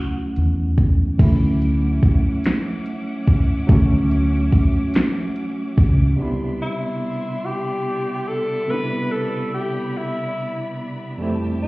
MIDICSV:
0, 0, Header, 1, 7, 480
1, 0, Start_track
1, 0, Key_signature, 0, "major"
1, 0, Tempo, 833333
1, 687, Time_signature, 6, 3, 24, 8
1, 6726, End_track
2, 0, Start_track
2, 0, Title_t, "String section"
2, 0, Program_c, 0, 48
2, 685, Note_on_c, 0, 86, 75
2, 686, Note_on_c, 0, 78, 61
2, 688, Note_on_c, 0, 61, 72
2, 688, Note_on_c, 0, 76, 60
2, 3543, Note_off_c, 0, 78, 0
2, 3543, Note_off_c, 0, 86, 0
2, 3544, Note_off_c, 0, 61, 0
2, 3544, Note_off_c, 0, 76, 0
2, 3556, Note_on_c, 0, 59, 76
2, 3558, Note_on_c, 0, 74, 71
2, 3559, Note_on_c, 0, 84, 76
2, 3561, Note_on_c, 0, 76, 72
2, 4988, Note_off_c, 0, 84, 0
2, 5008, Note_on_c, 0, 83, 91
2, 6418, Note_off_c, 0, 59, 0
2, 6419, Note_off_c, 0, 74, 0
2, 6421, Note_off_c, 0, 76, 0
2, 6433, Note_off_c, 0, 83, 0
2, 6449, Note_on_c, 0, 67, 77
2, 6451, Note_on_c, 0, 76, 70
2, 6451, Note_on_c, 0, 79, 75
2, 6451, Note_on_c, 0, 81, 94
2, 6726, Note_off_c, 0, 67, 0
2, 6726, Note_off_c, 0, 76, 0
2, 6726, Note_off_c, 0, 79, 0
2, 6726, Note_off_c, 0, 81, 0
2, 6726, End_track
3, 0, Start_track
3, 0, Title_t, "Tenor saxophone"
3, 0, Program_c, 1, 66
3, 0, Note_on_c, 1, 66, 106
3, 188, Note_off_c, 1, 66, 0
3, 3812, Note_on_c, 1, 64, 93
3, 4291, Note_on_c, 1, 67, 102
3, 4300, Note_off_c, 1, 64, 0
3, 4769, Note_on_c, 1, 69, 108
3, 4778, Note_off_c, 1, 67, 0
3, 5012, Note_on_c, 1, 71, 127
3, 5021, Note_off_c, 1, 69, 0
3, 5252, Note_on_c, 1, 69, 107
3, 5261, Note_off_c, 1, 71, 0
3, 5489, Note_off_c, 1, 69, 0
3, 5496, Note_on_c, 1, 67, 96
3, 5743, Note_on_c, 1, 64, 93
3, 5752, Note_off_c, 1, 67, 0
3, 6275, Note_off_c, 1, 64, 0
3, 6697, Note_on_c, 1, 64, 104
3, 6726, Note_off_c, 1, 64, 0
3, 6726, End_track
4, 0, Start_track
4, 0, Title_t, "Tine electric piano"
4, 0, Program_c, 2, 4
4, 0, Control_c, 2, 64, 127
4, 0, Note_on_c, 2, 54, 64
4, 0, Note_on_c, 2, 57, 64
4, 0, Note_on_c, 2, 61, 61
4, 0, Note_on_c, 2, 64, 73
4, 659, Note_off_c, 2, 54, 0
4, 665, Note_off_c, 2, 57, 0
4, 669, Note_off_c, 2, 61, 0
4, 673, Note_off_c, 2, 64, 0
4, 679, Note_on_c, 2, 52, 60
4, 687, Note_on_c, 2, 57, 65
4, 695, Control_c, 2, 64, 0
4, 698, Note_on_c, 2, 61, 65
4, 708, Note_on_c, 2, 64, 86
4, 718, Note_on_c, 2, 54, 74
4, 720, Note_off_c, 2, 52, 0
4, 782, Control_c, 2, 64, 127
4, 2104, Note_off_c, 2, 57, 0
4, 2105, Note_off_c, 2, 54, 0
4, 2109, Note_off_c, 2, 61, 0
4, 2112, Note_on_c, 2, 54, 77
4, 2114, Note_off_c, 2, 64, 0
4, 2125, Note_on_c, 2, 57, 70
4, 2135, Note_on_c, 2, 61, 69
4, 2143, Note_on_c, 2, 66, 86
4, 3536, Note_off_c, 2, 54, 0
4, 3543, Note_off_c, 2, 57, 0
4, 3548, Note_off_c, 2, 61, 0
4, 3550, Note_on_c, 2, 48, 82
4, 3552, Note_off_c, 2, 66, 0
4, 3558, Note_on_c, 2, 55, 74
4, 3565, Note_on_c, 2, 59, 70
4, 3573, Note_on_c, 2, 62, 74
4, 3574, Control_c, 2, 64, 0
4, 3581, Note_on_c, 2, 64, 85
4, 3688, Control_c, 2, 64, 127
4, 4975, Note_off_c, 2, 48, 0
4, 4979, Note_off_c, 2, 55, 0
4, 4983, Note_off_c, 2, 59, 0
4, 4987, Note_off_c, 2, 62, 0
4, 4991, Note_off_c, 2, 64, 0
4, 4998, Note_on_c, 2, 48, 72
4, 5007, Note_on_c, 2, 55, 62
4, 5014, Note_on_c, 2, 59, 64
4, 5021, Note_on_c, 2, 62, 65
4, 5028, Note_on_c, 2, 64, 79
4, 6419, Note_off_c, 2, 48, 0
4, 6424, Note_off_c, 2, 55, 0
4, 6427, Note_off_c, 2, 59, 0
4, 6431, Note_off_c, 2, 62, 0
4, 6434, Note_off_c, 2, 64, 0
4, 6439, Note_on_c, 2, 41, 81
4, 6444, Note_on_c, 2, 55, 80
4, 6453, Note_on_c, 2, 57, 84
4, 6454, Control_c, 2, 64, 0
4, 6461, Note_on_c, 2, 60, 75
4, 6470, Note_on_c, 2, 64, 90
4, 6560, Control_c, 2, 64, 127
4, 6726, Note_off_c, 2, 41, 0
4, 6726, Note_off_c, 2, 55, 0
4, 6726, Note_off_c, 2, 57, 0
4, 6726, Note_off_c, 2, 60, 0
4, 6726, Note_off_c, 2, 64, 0
4, 6726, End_track
5, 0, Start_track
5, 0, Title_t, "Fingered electric bass"
5, 0, Program_c, 3, 33
5, 216, Note_on_c, 3, 40, 82
5, 668, Note_off_c, 3, 40, 0
5, 692, Note_on_c, 3, 38, 102
5, 1146, Note_off_c, 3, 38, 0
5, 2131, Note_on_c, 3, 38, 105
5, 2586, Note_off_c, 3, 38, 0
5, 3333, Note_on_c, 3, 37, 78
5, 3547, Note_off_c, 3, 37, 0
5, 6726, End_track
6, 0, Start_track
6, 0, Title_t, "Muted fingered electric bass strokes"
6, 1173, Note_on_c, 9, 29, 44
6, 1231, Note_off_c, 9, 29, 0
6, 2611, Note_on_c, 9, 29, 47
6, 2669, Note_off_c, 9, 29, 0
6, 6726, End_track
7, 0, Start_track
7, 0, Title_t, "Drums"
7, 209, Note_on_c, 9, 42, 54
7, 267, Note_off_c, 9, 42, 0
7, 447, Note_on_c, 9, 42, 54
7, 448, Note_on_c, 9, 36, 79
7, 505, Note_off_c, 9, 36, 0
7, 505, Note_off_c, 9, 42, 0
7, 687, Note_on_c, 9, 36, 114
7, 688, Note_on_c, 9, 42, 72
7, 688, Note_on_c, 9, 49, 88
7, 745, Note_off_c, 9, 36, 0
7, 745, Note_off_c, 9, 42, 0
7, 745, Note_off_c, 9, 49, 0
7, 932, Note_on_c, 9, 42, 50
7, 989, Note_off_c, 9, 42, 0
7, 1167, Note_on_c, 9, 36, 86
7, 1170, Note_on_c, 9, 42, 50
7, 1225, Note_off_c, 9, 36, 0
7, 1228, Note_off_c, 9, 42, 0
7, 1406, Note_on_c, 9, 42, 81
7, 1420, Note_on_c, 9, 38, 98
7, 1464, Note_off_c, 9, 42, 0
7, 1477, Note_off_c, 9, 38, 0
7, 1646, Note_on_c, 9, 42, 54
7, 1704, Note_off_c, 9, 42, 0
7, 1886, Note_on_c, 9, 42, 50
7, 1887, Note_on_c, 9, 36, 87
7, 1943, Note_off_c, 9, 42, 0
7, 1944, Note_off_c, 9, 36, 0
7, 2125, Note_on_c, 9, 42, 74
7, 2126, Note_on_c, 9, 36, 122
7, 2182, Note_off_c, 9, 42, 0
7, 2183, Note_off_c, 9, 36, 0
7, 2369, Note_on_c, 9, 42, 50
7, 2427, Note_off_c, 9, 42, 0
7, 2606, Note_on_c, 9, 36, 86
7, 2606, Note_on_c, 9, 42, 46
7, 2663, Note_off_c, 9, 42, 0
7, 2664, Note_off_c, 9, 36, 0
7, 2845, Note_on_c, 9, 42, 82
7, 2858, Note_on_c, 9, 38, 107
7, 2903, Note_off_c, 9, 42, 0
7, 2916, Note_off_c, 9, 38, 0
7, 3086, Note_on_c, 9, 42, 55
7, 3144, Note_off_c, 9, 42, 0
7, 3327, Note_on_c, 9, 36, 92
7, 3327, Note_on_c, 9, 42, 51
7, 3385, Note_off_c, 9, 36, 0
7, 3385, Note_off_c, 9, 42, 0
7, 6726, End_track
0, 0, End_of_file